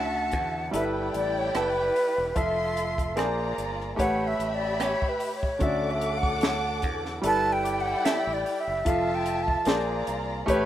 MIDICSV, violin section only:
0, 0, Header, 1, 2, 480
1, 0, Start_track
1, 0, Tempo, 811908
1, 1398, Time_signature, 4, 2, 24, 8
1, 6299, End_track
2, 0, Start_track
2, 0, Title_t, "Violin section"
2, 0, Program_c, 0, 48
2, 0, Note_on_c, 0, 66, 86
2, 0, Note_on_c, 0, 76, 85
2, 0, Note_on_c, 0, 81, 90
2, 414, Note_off_c, 0, 76, 0
2, 415, Note_off_c, 0, 66, 0
2, 416, Note_off_c, 0, 81, 0
2, 424, Note_on_c, 0, 79, 97
2, 427, Note_on_c, 0, 64, 84
2, 430, Note_on_c, 0, 74, 80
2, 1372, Note_off_c, 0, 79, 0
2, 1374, Note_off_c, 0, 64, 0
2, 1375, Note_off_c, 0, 74, 0
2, 1392, Note_on_c, 0, 69, 73
2, 1394, Note_on_c, 0, 65, 78
2, 1394, Note_on_c, 0, 84, 91
2, 1865, Note_off_c, 0, 69, 0
2, 1866, Note_off_c, 0, 84, 0
2, 1867, Note_off_c, 0, 65, 0
2, 1873, Note_on_c, 0, 65, 71
2, 1879, Note_on_c, 0, 82, 82
2, 1880, Note_on_c, 0, 74, 72
2, 2346, Note_off_c, 0, 65, 0
2, 2349, Note_off_c, 0, 82, 0
2, 2350, Note_off_c, 0, 74, 0
2, 2350, Note_on_c, 0, 83, 85
2, 2353, Note_on_c, 0, 76, 84
2, 2354, Note_on_c, 0, 67, 82
2, 3295, Note_off_c, 0, 83, 0
2, 3296, Note_off_c, 0, 76, 0
2, 3297, Note_off_c, 0, 67, 0
2, 3309, Note_on_c, 0, 86, 89
2, 3310, Note_on_c, 0, 78, 86
2, 3312, Note_on_c, 0, 69, 79
2, 4254, Note_off_c, 0, 86, 0
2, 4255, Note_off_c, 0, 78, 0
2, 4256, Note_off_c, 0, 69, 0
2, 4280, Note_on_c, 0, 64, 87
2, 4282, Note_on_c, 0, 74, 83
2, 4282, Note_on_c, 0, 79, 99
2, 5219, Note_off_c, 0, 64, 0
2, 5220, Note_off_c, 0, 74, 0
2, 5220, Note_off_c, 0, 79, 0
2, 5246, Note_on_c, 0, 65, 76
2, 5246, Note_on_c, 0, 81, 91
2, 5247, Note_on_c, 0, 76, 78
2, 5711, Note_off_c, 0, 65, 0
2, 5712, Note_off_c, 0, 76, 0
2, 5712, Note_off_c, 0, 81, 0
2, 5724, Note_on_c, 0, 65, 77
2, 5725, Note_on_c, 0, 82, 80
2, 5727, Note_on_c, 0, 74, 78
2, 6190, Note_off_c, 0, 65, 0
2, 6191, Note_off_c, 0, 82, 0
2, 6192, Note_off_c, 0, 74, 0
2, 6204, Note_on_c, 0, 67, 89
2, 6206, Note_on_c, 0, 83, 91
2, 6208, Note_on_c, 0, 76, 84
2, 6299, Note_off_c, 0, 67, 0
2, 6299, Note_off_c, 0, 76, 0
2, 6299, Note_off_c, 0, 83, 0
2, 6299, End_track
0, 0, End_of_file